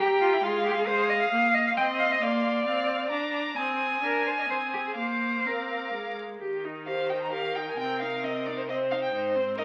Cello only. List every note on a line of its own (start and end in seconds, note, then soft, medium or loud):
0.21 0.34 F4 loud
0.33 0.44 E4 medium
0.43 0.64 F4 loud
0.65 0.76 G4 loud
0.77 0.88 G#4 medium
0.86 1.11 C5 loud
1.09 1.20 D#5 medium
1.21 1.30 F5 medium
1.31 1.55 F5 loud
1.54 1.65 D#5 medium
1.66 1.71 F5 medium
1.77 1.85 G5 loud
1.99 2.13 F5 medium
2.11 2.23 D#5 medium
2.21 3.33 D5 medium
4.02 4.27 A#4 medium
4.26 4.37 C5 medium
4.39 4.43 D#5 medium
4.49 4.57 C5 medium
4.73 4.78 G4 medium
4.87 4.97 G#4 soft
4.97 5.47 C5 medium
5.46 6.17 A#4 medium
6.41 7.75 D#3 soft
7.79 9.11 C3 medium
9.14 9.64 G#2 medium